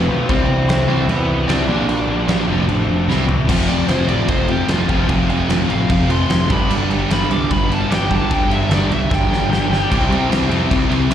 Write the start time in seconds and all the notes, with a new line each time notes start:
Already playing: B3 B4
0.09 B1 F3 A3 C4 F4
0.28 C2 C3 E3 G3 C4 E4 C5, kick, crash
0.48 C2
0.68 C2 C4 C5, snare, crash
0.87 C2 C3 G3 C4
1.07 E2 C3 E3 G3 C4 E4 B4, crash
1.11 B3
1.28 C2
1.47 C2 C3 G3 C4 D4 D5, snare, crash
1.67 A#1 A#2 F3 A#3 D4 F4
1.88 A#1, crash
2.08 A#1
2.27 A#1 A#2 F3 A#3, snare, crash
2.47 F1 F2 C3 F3 A3 C4 F4
2.67 A1, crash
2.88 F1
3.07 C2 C3 E3 G3 C4 E4, snare
3.28 C2, floor tom
3.48 F1 F2 C3 F3 A3 C4 F4, kick, crash
3.67 F1 F2 C3 F3 D5, crash
3.87 F1 F2 C3 F3 C5, snare, crash
4.07 A1 F2 C3 F3 D5, crash
4.28 F1 F2 C3 F3 C5, kick, crash
4.47 F1 F2 C3 F3 G4, crash
4.67 F1 F2 C3 F3 F4, snare, crash
4.87 F1 F2 C3 F3 A3 C4 F4, kick, crash
5.06 F1 F2 C3 F3 A3 C4 F4, kick, crash
5.29 F1 F2 C3 F3, crash
5.49 F1 F2 C3 F3, snare, crash
5.69 A1 F2 C3 F3 F5, crash
5.88 F1 F2 C3 F3 F5, kick, crash
6.08 F1 F2 C3 F3 C6, crash
6.28 F1 F2 C3 F3 C6, snare, crash
6.49 G1 G2 D3 G3 B3 D4 G4 B5, kick, crash
6.68 G1 G2 D3 G3, crash
6.89 G1 G2 D3 G3, crash
7.10 G1 G2 D3 G3 B5, snare, crash
7.29 C2 G2 D3 G3 D6, crash
7.50 G1 G2 D3 G3 B5, kick, crash
7.69 G1 G2 D3 G3, crash
7.74 A5
7.89 G1 G2 D3 G3 B3 D4 G4, snare, crash
7.94 G5
8.10 G1 G2 D3 G3 B3 D4 G4, kick, crash
8.15 A5
8.30 G1 G2 D3 G3, kick, crash
8.34 G5
8.49 G1 G2 D3 G3 E5, crash
8.69 G1 G2 D3 G3, snare, crash
8.74 D5
8.90 C2 G2 D3 G3, crash
8.94 E5
9.11 G1 G2 D3 G3 G5, kick, snare
9.29 G1 G2 D3 G3
9.33 snare
9.49 G1 G2 D3 G3 B3 D4 G4, snare
9.70 G1 G2 D3 G3, snare
9.89 C2 C3 G3 C4 E4 G4, kick, crash
10.09 C2 C3 G3 C4, crash
10.29 C2 C3 G3 C4, snare, crash
10.49 F2 C3 G3 C4, crash
10.70 C2 C3 G3 C4, kick, crash
10.90 C2 C3 G3 C4, crash
11.10 C2 C3 G3 C4, crash